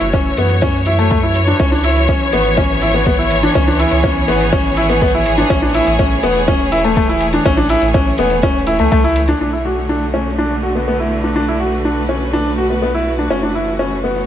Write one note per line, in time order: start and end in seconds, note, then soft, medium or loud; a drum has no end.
0.00 0.31 F#1 medium
0.00 9.41 E3 medium
0.00 1.60 A3 medium
0.00 3.03 F#4 medium
0.00 10.01 C#5 medium
0.00 closed hi-hat soft
0.13 0.29 C#4 medium
0.13 kick loud
0.13 closed hi-hat soft
0.37 1.54 F#2 medium
0.37 0.54 B3 medium
0.37 closed hi-hat medium
0.49 closed hi-hat soft
0.62 0.78 C#4 medium
0.62 kick loud
0.62 closed hi-hat soft
0.86 0.94 E4 medium
0.86 closed hi-hat medium
0.99 1.07 A3 medium
0.99 closed hi-hat soft
1.11 1.19 A3 medium
1.11 kick loud
1.11 closed hi-hat soft
1.23 1.39 E4 medium
1.35 closed hi-hat medium
1.47 1.55 D4 medium
1.47 closed hi-hat soft
1.60 2.15 C#2 loud
1.60 1.68 C#4 medium
1.60 kick loud
1.60 closed hi-hat soft
1.72 1.80 D4 medium
1.84 2.00 E4 medium
1.84 closed hi-hat medium
1.96 closed hi-hat soft
2.04 6.66 B3 medium
2.09 2.24 C#4 medium
2.09 kick medium
2.09 closed hi-hat soft
2.33 3.49 G#1 medium
2.33 2.49 B3 medium
2.33 closed hi-hat medium
2.45 closed hi-hat soft
2.57 2.73 C#4 medium
2.57 10.18 G#4 medium
2.57 kick medium
2.57 closed hi-hat soft
2.82 2.90 E4 medium
2.82 closed hi-hat medium
2.94 3.02 B3 medium
2.94 closed hi-hat soft
3.06 3.14 B3 medium
3.06 kick loud
3.06 closed hi-hat soft
3.19 3.34 E4 medium
3.31 closed hi-hat medium
3.43 3.51 D4 medium
3.43 closed hi-hat soft
3.55 3.85 C#2 loud
3.55 3.63 C#4 medium
3.55 kick medium
3.55 closed hi-hat soft
3.68 3.75 D4 medium
3.80 3.95 E4 medium
3.80 closed hi-hat medium
3.92 4.22 C#2 medium
3.92 closed hi-hat soft
4.04 4.19 C#4 medium
4.04 kick medium
4.04 closed hi-hat soft
4.28 5.44 G#1 medium
4.28 4.44 B3 medium
4.28 closed hi-hat medium
4.41 closed hi-hat soft
4.53 4.68 C#4 medium
4.53 kick loud
4.53 closed hi-hat soft
4.77 4.85 E4 medium
4.77 closed hi-hat medium
4.89 4.97 B3 medium
4.89 closed hi-hat soft
5.01 5.10 B3 medium
5.01 kick loud
5.01 closed hi-hat soft
5.14 5.30 E4 medium
5.26 closed hi-hat medium
5.38 5.46 D4 medium
5.38 closed hi-hat soft
5.50 5.80 A1 medium
5.50 5.58 C#4 medium
5.50 kick loud
5.50 closed hi-hat soft
5.62 5.70 D4 medium
5.72 14.26 A3 medium
5.72 5.90 E4 medium
5.72 closed hi-hat medium
5.87 6.17 A1 medium
5.87 closed hi-hat soft
5.99 6.15 C#4 medium
5.99 kick loud
5.99 closed hi-hat soft
6.23 7.39 E1 medium
6.23 6.39 B3 medium
6.23 closed hi-hat medium
6.35 closed hi-hat soft
6.48 6.63 C#4 medium
6.48 kick medium
6.48 closed hi-hat soft
6.72 6.80 E4 medium
6.72 closed hi-hat medium
6.84 6.92 A3 medium
6.84 closed hi-hat soft
6.96 7.05 A3 medium
6.96 kick loud
6.96 closed hi-hat soft
7.09 7.25 E4 medium
7.21 closed hi-hat medium
7.33 7.41 D4 medium
7.33 closed hi-hat soft
7.45 7.76 A1 loud
7.45 7.53 C#4 loud
7.45 kick loud
7.45 closed hi-hat soft
7.57 7.65 D4 medium
7.69 7.85 E4 medium
7.69 closed hi-hat medium
7.82 8.12 A1 medium
7.82 closed hi-hat soft
7.94 8.10 C#4 medium
7.94 kick loud
7.94 closed hi-hat soft
8.18 8.79 E1 medium
8.18 8.34 B3 medium
8.18 closed hi-hat medium
8.30 closed hi-hat soft
8.42 8.59 C#4 medium
8.42 kick medium
8.42 closed hi-hat soft
8.67 8.75 E4 medium
8.67 closed hi-hat medium
8.79 8.88 C#2 medium
8.79 8.87 A3 medium
8.79 closed hi-hat soft
8.91 9.34 C#2 medium
8.91 9.00 A3 medium
8.91 kick loud
8.91 closed hi-hat soft
9.04 9.20 E4 medium
9.16 closed hi-hat medium
9.28 9.36 D4 medium
9.28 closed hi-hat soft
9.41 13.29 B1 medium
9.41 13.31 D3 medium
9.41 9.49 D4 medium
9.53 9.61 E4 medium
9.65 9.81 F#4 medium
9.71 14.26 F#4 medium
9.89 10.05 D4 medium
10.14 10.29 C#4 medium
10.39 10.54 D4 medium
10.63 10.71 F#4 medium
10.75 10.83 B3 medium
10.75 14.26 B4 medium
10.88 10.95 B3 medium
11.00 11.15 E4 medium
11.24 11.32 D4 medium
11.36 11.44 D4 medium
11.48 11.56 E4 medium
11.60 11.76 F#4 medium
11.85 12.00 D4 medium
12.09 12.25 C#4 medium
12.33 12.49 D4 medium
12.58 12.66 F#4 medium
12.70 12.78 B3 medium
12.82 12.90 B3 medium
12.95 13.10 E4 medium
13.19 13.27 D4 medium
13.30 14.26 F#1 medium
13.30 14.26 E3 medium
13.30 13.38 C#4 medium
13.43 13.51 D4 medium
13.55 13.71 E4 medium
13.79 13.95 C#4 medium
14.04 14.19 B3 medium
14.16 14.26 C#5 medium